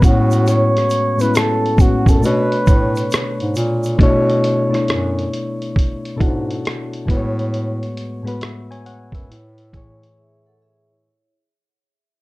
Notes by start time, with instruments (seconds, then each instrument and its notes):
0.00 synth keys A2 G#3 B3 C#4 F#4, bass clarinet A2, flugelhorn F#4, kick, closed hi-hat, shaker
0.31 closed hi-hat, shaker
0.47 flugelhorn C#5, closed hi-hat, shaker
0.77 cross-stick, closed hi-hat
0.90 closed hi-hat, shaker
1.17 synth keys A2 G#3 B3 C#4, flugelhorn B4, shaker
1.21 synth keys E4, closed hi-hat
1.35 flugelhorn A4, cross-stick, closed hi-hat, shaker
1.66 closed hi-hat
1.76 synth keys A2 G#3 B3 C#4, flugelhorn F#4, kick, closed hi-hat, shaker
1.82 synth keys F#4
2.06 bass clarinet F#2, flugelhorn A4, kick, closed hi-hat, shaker
2.21 synth keys B2 A3 D4, bass clarinet B2, flugelhorn B4, shaker
2.25 synth keys C#5, closed hi-hat
2.52 closed hi-hat
2.67 bass clarinet A2, kick, closed hi-hat, shaker
2.96 closed hi-hat, shaker
3.11 cross-stick, closed hi-hat, shaker
3.40 bass clarinet G#2, closed hi-hat
3.55 bass clarinet A#2, closed hi-hat, shaker
3.83 closed hi-hat, shaker
3.98 synth keys B2 A3 D4 E4, bass clarinet B2, kick, closed hi-hat
4.03 synth keys C#5
4.30 closed hi-hat
4.44 closed hi-hat
4.69 synth keys B2 A3 D4 E4
4.74 synth keys C#5, cross-stick, closed hi-hat
4.88 bass clarinet F#2, cross-stick, closed hi-hat
5.19 closed hi-hat
5.33 closed hi-hat
5.62 closed hi-hat
5.76 kick, closed hi-hat
6.05 closed hi-hat
6.16 synth keys B2 D4 E4 A4
6.20 bass clarinet G#2, synth keys F#4, kick, closed hi-hat
6.51 closed hi-hat
6.65 cross-stick, closed hi-hat
6.93 closed hi-hat
7.05 synth keys A2 G#3 B3 F#4, bass clarinet A2, kick
7.10 synth keys B4, closed hi-hat
7.17 synth keys C#5
7.39 closed hi-hat
7.54 closed hi-hat
7.83 closed hi-hat
7.97 closed hi-hat
8.23 synth keys A2 G#3 B3 F#4
8.27 synth keys B4, closed hi-hat
8.41 synth keys B4 E5, cross-stick, closed hi-hat
8.71 synth keys C#5 G#5, closed hi-hat
8.86 synth keys C#5 F#5, closed hi-hat
9.12 bass clarinet F#2, synth keys B4 E5, kick, closed hi-hat
9.30 bass clarinet A2, closed hi-hat
9.58 closed hi-hat
9.72 synth keys A2 E3 G#4, kick, closed hi-hat
9.77 synth keys C#5
10.02 vibraphone E4 C#5, closed hi-hat
10.18 vibraphone G#4 E5
10.46 vibraphone A4 F#5
10.62 vibraphone G#4 E5
10.90 vibraphone E4 C#5